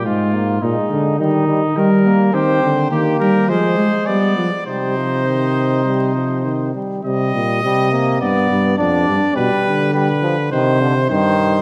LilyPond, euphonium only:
\new Staff \with { instrumentName = "Euphonium" } { \clef bass \time 4/4 \key ees \major \tempo 4 = 104 aes,4 bes,8 d8 ees4 g4 | \key c \minor ees8 d8 ees8 g8 f8 aes8 g8 f8 | c2.~ c8 r8 | c8 bes,8 c4 g,8 g,8 f,8 g,8 |
b,8 d4. c4 g,4 | }